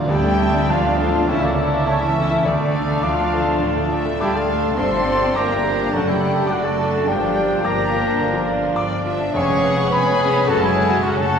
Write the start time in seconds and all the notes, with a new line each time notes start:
Already playing: A2 A3 F4 G4 A4 D5
0.08 D2 G3 A3 E4 G4 D5 G5 A5, tam-tam
0.24 A3
0.39 A3 D4 A4 E5
0.54 D5
0.69 D2 F3 A3 D4 F4 D5 F5 A5
0.84 D5
0.99 A3 D4 A4 C5
1.13 D4
1.28 C#2 E3 A3 C#4 E4 C#5 E5 A5
1.41 D3 A3 A#3 D4 D5
1.59 A3 E4 A4
1.74 E5
1.85 C#2 C#3 A3 C#4 C#5 E5 A5
2.00 E3 C#4 E4 E5
2.17 A3 E4 A4
2.30 E4
2.43 D2 D3 A3 D4 D5 A5
2.60 A3
2.74 A3 D4 D5 F5
2.89 A4
3.01 D2 F3 A3 D4 F4 D5 F5 A5 D6
3.19 D5
3.33 A3 D4 A4 C5
3.47 D4
3.62 D2 A2 D5
3.77 A3
3.90 A3 D4 D5 E5
4.05 A4
4.20 D2 G3 E4 G4 F5 G5 D6
4.34 A3 F4 A4 D5 A5
4.50 A3 D4 A4
4.65 D4
4.78 G1 G2 F3 C4 D4 A4 C5 E5 F5 C6
4.92 G3
5.06 F3 D4 D5
5.21 G4
5.35 G1 A#3 D4 G4 A#4 E5 F5 A#5 D6
5.49 D5
5.64 F3 D4 G4 F5
5.78 D4
5.92 F#1 F#2 D3 A3 D4 F#4 A4 F#5 A5
5.97 D5
6.07 G3 A3 E4 G4 G5
6.21 D3 D4 D5
6.35 A4
6.47 F#1 D4 F#4 F#5 D6
6.51 F#3 D5 F#5
6.63 A3 F#4 A4 D5 A5
6.77 D3 D4 A4
6.93 D4
7.06 G1 G2 F3 G3 D4 G4 A#4 F5 G5
7.22 F3
7.35 F3 D4 D5
7.50 F4
7.64 G1 A#3 D4 G4 A#4 F5 A#5 D6
7.79 D5
7.93 F3 D4 F4
8.07 D4
8.20 G1 D3
8.33 F3
8.48 F3 D4 D5
8.63 F4
8.76 G1 D5 D6
8.92 D5
9.06 F3 D4 F4 E5
9.21 D4
9.32 F1 F2 B3 C#4 G#4 C#5 F5 G#5 C#6
9.36 C#6
9.49 G#3
9.63 G#3 C#4 B4 F#5
9.77 C#5
9.89 F1 B3 G#4 B4 G#5 B5
9.94 B5
10.06 C#5
10.20 G#3 C#4 G#4
10.33 C#4
10.47 F#1 F#2 F#3 A3 C#4 F#4 A4 F#5 A5
10.61 F#3 G#3 E4 G#4 G#5
10.65 G#5
10.76 F#3 C#4 C#5
10.90 F#4
11.03 F#1 F#3 C#4 F#4 A4 F#5 C#6
11.08 F#5
11.16 A3 F#4 A4 C#5 A5
11.21 A5
11.32 F#3 C#4 F#4